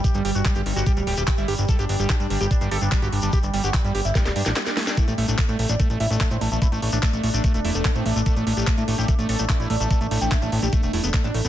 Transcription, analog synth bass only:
\new Staff \with { instrumentName = "Analog synth bass" } { \clef bass \time 4/4 \key g \mixolydian \tempo 4 = 146 r16 g,,16 g,,16 g,,16 r16 g,,16 g,,16 g,,16 r16 d,,16 d,,16 d,,16 r16 g,,16 g,,16 g,,16 | r16 g,,16 g,,16 g,,16 r16 g,16 g,,16 g,,16 r16 g,,16 g,,16 g,,16 r16 g,,16 g,,16 g,,16 | r16 g,,16 g,,16 g,,16 r16 g,,16 g,,16 g,,16 r16 d,,16 g,16 a,,16 r4 | r16 a,,16 a,,16 a,,16 r16 a,16 a,,16 a,,16 r16 a,,16 a,,16 a,,16 r16 a,,16 a,,16 a,,16 |
r16 a,,16 a,,16 a,,16 r16 a,,16 a,,16 a,,16 r16 e,,16 e,,16 e,,16 r16 a,,16 a,,16 a,,16 | r16 a,,16 a,,16 a,,16 r16 a,16 a,,16 a,,16 r16 a,,16 a,,16 a,,16 r16 a,,16 a,,16 a,,16 | r16 a,,16 a,,16 a,,16 r16 a,,16 a,,16 a,,16 r16 e,,16 e,,16 e,,16 r16 a,,16 a,,16 a,,16 | }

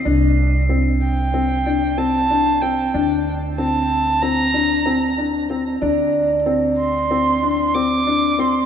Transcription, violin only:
\new Staff \with { instrumentName = "Violin" } { \time 9/8 \key c \dorian \tempo 4. = 62 r4. g''4. a''4 g''8~ | g''8 r8 a''4 bes''4. r4 | r4. c'''4. d'''4 c'''8 | }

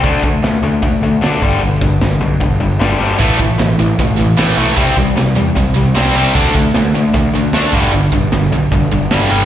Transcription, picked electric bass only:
\new Staff \with { instrumentName = "Picked electric bass" } { \clef bass \time 4/4 \key g \lydian \tempo 4 = 152 d,8 d,8 d,8 d,8 d,8 d,8 d,8 g,,8 | g,,8 g,,8 g,,8 b,,8 g,,8 g,,8 g,,8 g,,8 | a,,8 a,,8 a,,8 a,,8 a,,8 a,,8 a,,8 b,,8 | c,8 c,8 c,8 e,8 c,8 c,8 c,8 c,8 |
d,8 d,8 d,8 d,8 d,8 d,8 d,8 g,,8 | g,,8 g,,8 g,,8 b,,8 g,,8 g,,8 g,,8 g,,8 | }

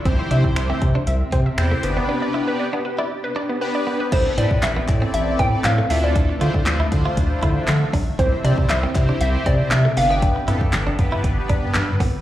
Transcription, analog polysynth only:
\new Staff \with { instrumentName = "Analog polysynth" } { \time 4/4 \key g \mixolydian \tempo 4 = 118 <c' e' g' c''>4. r4. <c' e' g' c''>8 <b d' g' b'>8~ | <b d' g' b'>4 r2 <b d' g' b'>8. r16 | <c' e' a' b'>8 <c' e' a' b'>8. r16 <c' e' a' d''>4. r8 <d' e' f' a'>8~ | <d' e' f' a'>8 <d' e' f' c''>8. r16 <d' e' f' c''>4. r4 |
<c' e' g' c''>8 <c' e' g' c''>8. r16 <c' e' g' c''>4. r8 <b d' g' b'>8~ | <b d' g' b'>8 <b d' g' a'>8. r16 <b d' g' b'>4. r4 | }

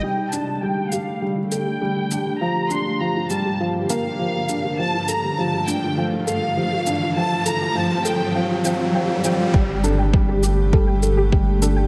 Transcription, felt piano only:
\new Staff \with { instrumentName = "Felt piano" } { \clef bass \time 4/4 \key g \minor \tempo 4 = 101 g8 d'8 g8 g'8 g8 a'8 g8 d'8 | f8 d'8 f8 g8 f8 bes8 f8 d'8 | f8 a'8 f8 d'8 f8 a'8 f8 d'8 | f8 a'8 f8 a'8 f8 f8 f8 f8 |
g8 d'8 g8 g'8 g8 a'8 g8 d'8 | }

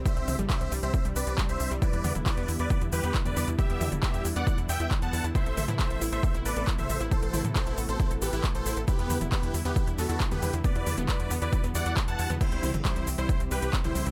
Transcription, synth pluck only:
\new Staff \with { instrumentName = "Synth pluck" } { \time 4/4 \key e \minor \tempo 4 = 136 g16 c'16 c'16 g16 c'16 c'16 g16 c'16 c'16 g16 c'16 c'16 g16 c'16 c'16 g16 | e'16 e'16 b16 e'16 e'16 b16 e'16 e'16 b16 e'16 e'16 b16 e'16 e'16 b16 e'16 | e'16 b16 e'16 e'16 b16 e'16 e'16 b16 e'16 e'16 b16 e'16 e'16 b16 e'16 e'16 | e'16 a'16 a'16 e'16 a'16 a'16 e'16 a'16 a'16 e'16 a'16 a'16 e'16 a'16 a'16 e'16 |
a'16 a'16 e'16 a'16 a'16 e'16 a'16 a'16 e'16 a'16 a'16 e'16 a'16 a'16 e'16 a'16 | e'16 b16 e'16 e'16 b16 e'16 e'16 b16 e'16 e'16 b16 e'16 r16 b16 e'16 e'16 | b16 e'16 e'16 b16 e'16 e'16 b16 e'16 e'16 b16 e'16 e'16 r16 e'16 e'16 b16 | c'16 g16 c'16 c'16 g16 c'16 c'16 g16 c'16 c'16 g16 c'16 c'16 g16 c'16 c'16 | }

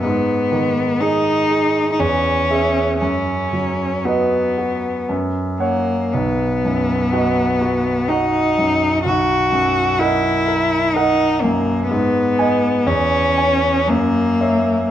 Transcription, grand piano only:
\new Staff \with { instrumentName = "Grand piano" } { \time 3/4 \key b \major \tempo 4 = 61 gis,8 dis8 <gis' dis''>8 gis'8 e,8 <gis' e''>8 | fis,8 fis8 <fis' b' dis''>8 fis'8 fis,8 <cis'' fis''>8 | b,,8 fis,8 <fis' dis'' fis''>8 fis'8 <fis' dis'' fis''>8 fis,8 | b,,8 fis,8 <ais' dis'' fis''>8 ais'8 <ais' dis'' fis''>8 fis,8 |
gis,8 <dis'' gis''>8 e,8 <cis'' gis''>8 fis,8 <cis'' e''>8 | }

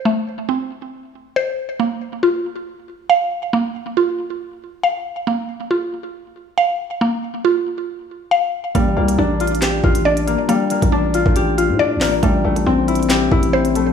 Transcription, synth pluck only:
\new Staff \with { instrumentName = "Synth pluck" } { \time 4/4 \key bes \lydian \tempo 4 = 138 <a c' c''>4 c'2 c''4 | bes4 f'2 f''4 | bes4 f'2 f''4 | bes4 f'2 f''4 |
bes4 f'2 f''4 | bes4 d'2 d''4 | bes4 d'2 d''4 | a4 c'2 c''4 | }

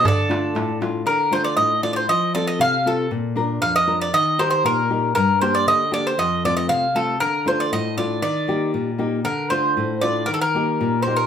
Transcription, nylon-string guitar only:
\new Staff \with { instrumentName = "Nylon-string guitar" } { \time 2/4 \key d \phrygian \tempo 4 = 117 d8 <a d' f'>8 a,8 <a d' f'>8 | d8 <a d' f'>8 a,8 <a d' f'>8 | f8 <c' f' a'>8 c8 <c' f' a'>8 | bes,8 <d' f' bes'>8 f,8 <d' f' bes'>8 |
ees8 <ees' g' bes'>8 bes,8 <ees' g' bes'>8 | g,8 <bes d' g'>8 d8 <bes d' g'>8 | f,8 <a c' f'>8 c8 <a c' f'>8 | d8 <a d' f'>8 a,8 <a d' f'>8 |
ees8 <bes ees' g'>8 bes,8 <bes ees' g'>8 | d8 <a d' f'>8 a,8 <a d' f'>8 | ees8 <bes ees' g'>8 bes,8 <bes ees' g'>8 | }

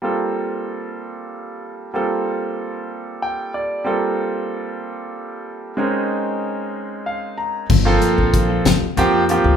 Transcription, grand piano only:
\new Staff \with { instrumentName = "Grand piano" } { \time 6/8 \key g \minor \tempo 4. = 63 << { r2. | r2 g''8 d''8 | r2. | r2 f''8 bes''8 |
r2. | } \\ { <g bes c' f' a'>2. | <g bes c' f' a'>2. | <g bes c' f' a'>2. | <aes c' des' ees' bes'>2. |
r16 <f bes c' a'>4~ <f bes c' a'>16 r8 <f bes c' g'>8 <f bes c' g'>8 | } >> }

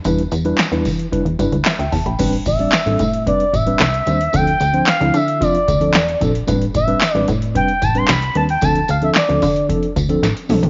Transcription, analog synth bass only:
\new Staff \with { instrumentName = "Analog synth bass" } { \clef bass \time 4/4 \key a \minor \tempo 4 = 112 e,8 e,8 r16 e,16 e8 r16 e,16 g,16 d,16 r16 d,16 e,16 bes,,16 | a,,8 a,,8 r16 a,,16 a,8. r16 a,,8 c,8 dis,8 | d,8 d,8 r16 d,16 d8. r16 d,8 e,8 bes,,8 | a,,8 a,,8 r16 a,,16 a,8. r16 a,,8 c,8 dis,8 |
d,8 d,8 r16 d,16 d8. r16 d,8 a,,16 r16 b,,16 bes,,16 | }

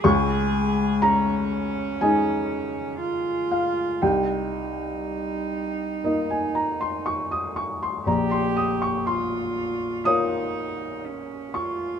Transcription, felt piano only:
\new Staff \with { instrumentName = "Felt piano" } { \time 4/4 \key bes \dorian \tempo 4 = 60 << { des'''4 bes''4 aes''4. f''8 | g''2~ g''16 aes''16 bes''16 c'''16 des'''16 ees'''16 des'''16 c'''16 | bes''16 c'''16 ees'''16 des'''16 c'''4 ees'''4. des'''8 | } \\ { des,2 <aes ees' ees''>2 | c,2 <bes ees' ees''>2 | bes,,2 <bes f' des''>2 | } >> }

